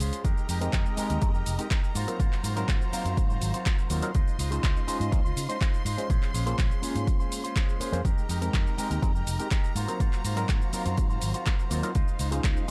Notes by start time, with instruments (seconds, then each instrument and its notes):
Already playing: string section G#3 C#4 C6
0.00 fingered electric bass C#2, clean electric guitar G#3 C#4 F4 C5, open hi-hat, shaker
0.13 closed hi-hat, shaker
0.24 fingered electric bass F2, clean electric guitar G#3 D#4 G4 A#4, string section D#5 G5 A#5, kick, closed hi-hat, shaker
0.38 shaker
0.49 fingered electric bass F2, clean electric guitar G#3 D#4 G4 A#4, open hi-hat, shaker
0.61 reed electric piano G#3 C4 D#4 G4 A#4, clean electric guitar D#4 G4 A#4, closed hi-hat, shaker
0.73 fingered electric bass F2, clean electric guitar G#3 D#4 G4 A#4, kick, clap, closed hi-hat, shaker
0.86 shaker
0.97 reed electric piano G#3 C4 D#4 G4 A#4, clean electric guitar G#3 D#4 G4 A#4, muted fingered electric bass stroke, open hi-hat, shaker
1.10 fingered electric bass D#2, clean electric guitar D#4 G4 A#4, closed hi-hat, shaker
1.22 fingered electric bass F2, reed electric piano G#3 C4 D#4 G4 A#4, kick, closed hi-hat, shaker
1.34 clean electric guitar D#4 G4 A#4, shaker
1.46 fingered electric bass F1, open hi-hat, shaker
1.58 reed electric piano G#3 C4 D#4 G4 A#4, clean electric guitar D#4 G4 A#4, closed hi-hat, shaker
1.70 clean electric guitar G#3 D#4 G4 A#4, kick, clap, closed hi-hat, shaker
1.83 clean electric guitar D#4 G4 A#4, shaker
1.95 fingered electric bass G#2, string section F#3 C5 F5, clean electric guitar A#3 F4 F#4 C5, open hi-hat, shaker
2.08 reed electric piano F#3 C4 D#4 F4 A#4, closed hi-hat, shaker
2.19 fingered electric bass G#2, clean electric guitar A#3 F4 F#4 C5, kick, closed hi-hat, shaker
2.33 clap, shaker
2.43 fingered electric bass G#2, clean electric guitar A#3 F4 F#4 C5, open hi-hat, shaker
2.56 reed electric piano F#3 C4 D#4 F4 A#4, clean electric guitar F4 F#4 C5, closed hi-hat, shaker
2.68 fingered electric bass G#2, clean electric guitar A#3 F4 F#4 C5, kick, clap, closed hi-hat, shaker
2.82 shaker
2.92 reed electric piano F#3 C4 D#4 A#4 F5, clean electric guitar A#3 F4 F#4 C5, muted fingered electric bass stroke, open hi-hat, shaker
3.05 fingered electric bass F#2, clean electric guitar F4 F#4 C5, closed hi-hat, shaker
3.17 fingered electric bass G#2, kick, closed hi-hat, shaker
3.29 clean electric guitar F4 F#4 C5, shaker
3.41 fingered electric bass G#1, open hi-hat, shaker
3.54 clean electric guitar F4 F#4 C5, closed hi-hat, shaker
3.66 clean electric guitar A#3 F4 F#4 C5, kick, clap, closed hi-hat, shaker
3.78 clean electric guitar F4 F#4 C5, shaker
3.90 fingered electric bass D#2, reed electric piano F#3 C4 D#4 F4 A#4, clean electric guitar A#3 F4 F#4 C5, open hi-hat, shaker
4.02 reed electric piano F#3 C4 D#4 F4 A#4, closed hi-hat, shaker
4.15 fingered electric bass C#2, clean electric guitar G#3 D#4 F4 C5, string section F4 D#5 C6, kick, closed hi-hat, shaker
4.28 shaker
4.39 fingered electric bass C#2, clean electric guitar G#3 D#4 F4 C5, open hi-hat, shaker
4.51 reed electric piano G#3 C#4 D#4 F4 C5, clean electric guitar D#4 F4 C5, closed hi-hat, shaker
4.63 fingered electric bass C#2, clean electric guitar G#3 D#4 F4 C5, kick, clap, closed hi-hat, shaker
4.77 shaker
4.87 reed electric piano G#3 C#4 D#4 F4 C5, clean electric guitar G#3 D#4 F4 C5, muted fingered electric bass stroke, open hi-hat, shaker
5.00 fingered electric bass G#2, clean electric guitar D#4 F4 C5, closed hi-hat, shaker
5.11 fingered electric bass C#2, reed electric piano G#3 C#4 D#4 F4 C5, kick, closed hi-hat, shaker
5.24 clean electric guitar D#4 F4 C5, shaker
5.36 fingered electric bass C#3, open hi-hat, shaker
5.48 reed electric piano G#3 C#4 D#4 F4 C5, clean electric guitar D#4 F4 C5, closed hi-hat, shaker
5.61 clean electric guitar G#3 D#4 F4 C5, kick, clap, closed hi-hat, shaker
5.74 shaker
5.85 fingered electric bass G#2, clean electric guitar G#3 D#4 F4 C5, open hi-hat, shaker
5.98 reed electric piano G#3 C#4 D#4 F4 C5, closed hi-hat, shaker
6.09 fingered electric bass A#1, string section G#3 C#4, clean electric guitar G#3 C#4 F4 C5, kick, closed hi-hat, shaker
6.23 clap, shaker
6.34 fingered electric bass A#1, clean electric guitar G#3 C#4 F4 C5, open hi-hat, shaker
6.46 reed electric piano A#3 C#4 F4 G#4 C5, clean electric guitar C#4 F4 C5, closed hi-hat, shaker
6.59 fingered electric bass A#1, clean electric guitar G#3 C#4 F4 C5, kick, clap, closed hi-hat, shaker
6.71 shaker
6.82 clean electric guitar G#3 C#4 F4 C5, reed electric piano A#3 C#4 F4 G#4 C5, muted fingered electric bass stroke, open hi-hat, shaker
6.95 fingered electric bass G#2, clean electric guitar C#4 F4 C5, closed hi-hat, shaker
7.07 kick, closed hi-hat, shaker
7.20 clean electric guitar C#4 F4 C5, shaker
7.32 open hi-hat, shaker
7.44 clean electric guitar C#4 F4 C5, closed hi-hat, shaker
7.56 clean electric guitar G#3 C#4 F4 C5, kick, clap, closed hi-hat, shaker
7.69 shaker
7.80 clean electric guitar G#3 C#4 F4 C5, reed electric piano A#3 C#4 F4 G#4 C5, muted fingered electric bass stroke, open hi-hat, shaker
7.92 fingered electric bass F2, reed electric piano A#3 C#4 F4 G#4 C5, closed hi-hat, shaker
8.05 fingered electric bass F2, clean electric guitar G#3 D#4 G4 A#4, string section D#5 G5 A#5, kick, closed hi-hat, shaker
8.18 shaker
8.29 fingered electric bass F2, clean electric guitar G#3 D#4 G4 A#4, open hi-hat, shaker
8.41 reed electric piano G#3 C4 D#4 G4 A#4, clean electric guitar D#4 G4 A#4, closed hi-hat, shaker
8.53 fingered electric bass F2, clean electric guitar G#3 D#4 G4 A#4, kick, clap, closed hi-hat, shaker
8.67 shaker
8.78 reed electric piano G#3 C4 D#4 G4 A#4, clean electric guitar G#3 D#4 G4 A#4, muted fingered electric bass stroke, open hi-hat, shaker
8.90 fingered electric bass D#2, clean electric guitar D#4 G4 A#4, closed hi-hat, shaker
9.02 fingered electric bass F2, reed electric piano G#3 C4 D#4 G4 A#4, kick, closed hi-hat, shaker
9.15 clean electric guitar D#4 G4 A#4, shaker
9.27 fingered electric bass F1, open hi-hat, shaker
9.39 reed electric piano G#3 C4 D#4 G4 A#4, clean electric guitar D#4 G4 A#4, closed hi-hat, shaker
9.51 clean electric guitar G#3 D#4 G4 A#4, kick, clap, closed hi-hat, shaker
9.64 shaker
9.75 fingered electric bass G#2, string section F#3 C5 F5, clean electric guitar A#3 F4 F#4 C5, open hi-hat, shaker
9.88 reed electric piano F#3 C4 D#4 F4 A#4, closed hi-hat, shaker
10.00 fingered electric bass G#2, clean electric guitar A#3 F4 F#4 C5, kick, closed hi-hat, shaker
10.13 clap, shaker
10.24 fingered electric bass G#2, clean electric guitar A#3 F4 F#4 C5, open hi-hat, shaker
10.36 reed electric piano F#3 C4 D#4 F4 A#4, clean electric guitar F4 F#4 C5, closed hi-hat, shaker
10.49 fingered electric bass G#2, clean electric guitar A#3 F4 F#4 C5, kick, clap, closed hi-hat, shaker
10.62 shaker
10.72 reed electric piano F#3 C4 D#4 A#4 F5, clean electric guitar A#3 F4 F#4 C5, muted fingered electric bass stroke, open hi-hat, shaker
10.85 fingered electric bass F#2, clean electric guitar F4 F#4 C5, closed hi-hat, shaker
10.98 fingered electric bass G#2, kick, closed hi-hat, shaker
11.10 clean electric guitar F4 F#4 C5, shaker
11.22 fingered electric bass G#1, open hi-hat, shaker
11.34 clean electric guitar F4 F#4 C5, closed hi-hat, shaker
11.46 clean electric guitar A#3 F4 F#4 C5, kick, clap, closed hi-hat, shaker
11.58 clean electric guitar F4 F#4 C5, shaker
11.70 fingered electric bass D#2, reed electric piano F#3 C4 D#4 F4 A#4, clean electric guitar A#3 F4 F#4 C5, open hi-hat, shaker
11.83 reed electric piano F#3 C4 D#4 F4 A#4, closed hi-hat, shaker
11.94 fingered electric bass C#2, clean electric guitar G#3 D#4 F4 C5, string section D#4 F5, kick, closed hi-hat, shaker
12.08 shaker
12.19 fingered electric bass C#2, clean electric guitar G#3 D#4 F4 C5, open hi-hat, shaker
12.31 reed electric piano G#3 C#4 D#4 F4 C5, clean electric guitar D#4 F4 C5, closed hi-hat, shaker
12.44 fingered electric bass C#2, clean electric guitar G#3 D#4 F4 C5, kick, clap, closed hi-hat, shaker
12.57 shaker